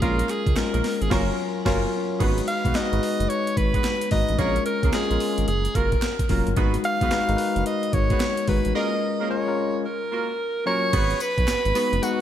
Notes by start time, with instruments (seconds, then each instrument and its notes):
0.01 analog synth bass A#1, tine electric piano G#3 C#4 F4 A#4, horn section A#3 C#4 G#4 A#4, alto saxophone F4, kick, closed hi-hat
0.19 closed hi-hat
0.29 alto saxophone G#4, clap, closed hi-hat
0.47 analog synth bass C#2, kick, closed hi-hat
0.56 analog synth bass A#1, tine electric piano G#3 C#4 F4 A#4, alto saxophone A#4, snare, clap, closed hi-hat
0.73 analog synth bass A#1, horn section A#3 C#4 G#4 A#4, closed hi-hat
0.84 snare, open hi-hat
1.02 analog synth bass G#1, alto saxophone G#4, closed hi-hat
1.10 analog synth bass F#1, tine electric piano F#3 C#4 F4 A#4, horn section A#3 F4 F#4 A#4, alto saxophone A#4, kick, snare, crash
1.65 analog synth bass F#1, tine electric piano F#3 C#4 F4 A#4, horn section A#3 F4 F#4 A#4, kick, snare, crash
2.20 analog synth bass G#1, tine electric piano G#3 D#4 F#4 B4, horn section B3 F#4 G#4 B4, kick, closed hi-hat, crash
2.38 closed hi-hat
2.48 alto saxophone F5, closed hi-hat
2.64 analog synth bass B1, horn section B3 F#4 G#4 B4, kick, closed hi-hat
2.75 analog synth bass G#1, tine electric piano G#3 D#4 F#4 B4, alto saxophone D#5, snare, clap, closed hi-hat
2.92 analog synth bass G#1, tine electric piano G#3 D#4 F#4 B4, closed hi-hat
3.03 open hi-hat
3.20 analog synth bass F#1, closed hi-hat
3.30 alto saxophone C#5, closed hi-hat
3.47 closed hi-hat
3.57 analog synth bass G#1, alto saxophone B4, kick, closed hi-hat
3.74 horn section B3 F#4 G#4 B4, kick, closed hi-hat
3.84 snare, clap, closed hi-hat
4.01 closed hi-hat
4.11 analog synth bass G#1, tine electric piano G#3 D#4 F#4 B4, alto saxophone D#5, kick, open hi-hat
4.29 analog synth bass A1, closed hi-hat
4.38 analog synth bass A#1, tine electric piano G#3 C4 F4 A#4, horn section A#3 C#4 G#4 A#4, alto saxophone C#5, kick, closed hi-hat
4.45 tine electric piano C#4
4.56 closed hi-hat
4.66 alto saxophone A#4, closed hi-hat
4.83 analog synth bass C#2, horn section A#3 C#4 G#4 A#4, kick, closed hi-hat
4.93 analog synth bass A#1, tine electric piano G#3 C#4 F4 A#4, alto saxophone G#4, snare, clap, closed hi-hat
5.10 analog synth bass A#1, tine electric piano G#3 C#4 F4 A#4, closed hi-hat
5.20 open hi-hat
5.38 analog synth bass G#1, closed hi-hat
5.48 analog synth bass F#1, alto saxophone G#4, closed hi-hat
5.65 closed hi-hat
5.75 analog synth bass F#1, horn section A#3 F4 F#4 A#4, alto saxophone A#4, kick, closed hi-hat
5.92 kick, closed hi-hat
6.02 snare, clap, closed hi-hat
6.19 kick, closed hi-hat
6.29 analog synth bass F1, tine electric piano F#3 C#4 F4 A#4, horn section A#3 F4 F#4 A#4, kick, open hi-hat
6.47 analog synth bass G1, closed hi-hat
6.57 analog synth bass G#1, tine electric piano G#3 D#4 F#4 B4, horn section B3 F#4 G#4 B4, kick, closed hi-hat
6.74 closed hi-hat
6.84 alto saxophone F5, closed hi-hat
7.01 analog synth bass B1, horn section B3 F#4 G#4 B4, kick, closed hi-hat
7.11 analog synth bass G#1, tine electric piano G#3 D#4 F#4 B4, snare, clap, closed hi-hat
7.29 analog synth bass G#1, tine electric piano G#3 D#4 F#4 A#4, closed hi-hat
7.36 tine electric piano B4, open hi-hat
7.56 analog synth bass F#1, closed hi-hat
7.66 alto saxophone D#5, closed hi-hat
7.83 closed hi-hat
7.93 analog synth bass G#1, alto saxophone C#5, kick, closed hi-hat
8.10 horn section B3 F#4 G#4 B4, kick, closed hi-hat
8.20 snare, clap, closed hi-hat
8.37 closed hi-hat
8.48 analog synth bass G#1, tine electric piano G#3 D#4 F#4 B4, alto saxophone B4, kick, open hi-hat
8.65 analog synth bass A1, closed hi-hat
8.75 tine electric piano G#3 C#4 F4 A#4, horn section A#3 C#4 G#4 A#4, alto saxophone D#5
9.19 horn section A#3 C#4 G#4 A#4
9.30 tine electric piano G#3 C#4 F4 A#4, alto saxophone C#5
9.47 tine electric piano G#3 C#4 F4 A#4
9.86 alto saxophone A#4
10.11 horn section A#3 F4 F#4 A#4
10.66 tine electric piano F#3 C#4 F4 A#4, horn section A#3 F4 F#4 A#4, alto saxophone C#5
10.93 analog synth bass G#1, horn section B3 F#4 G#4 B4, kick, closed hi-hat, crash
11.10 closed hi-hat
11.20 alto saxophone B4, closed hi-hat, tambourine
11.38 analog synth bass B1, kick, closed hi-hat
11.48 analog synth bass G#1, snare, clap, closed hi-hat, tambourine
11.65 analog synth bass G#1, closed hi-hat
11.75 tine electric piano G#3 B3 D#4 F#4 B4, horn section B3 F#4 G#4 B4, open hi-hat, tambourine
11.93 analog synth bass F#1, closed hi-hat
12.02 tine electric piano G#3 B3 D#4 F#4 B4, alto saxophone F#4, closed hi-hat, tambourine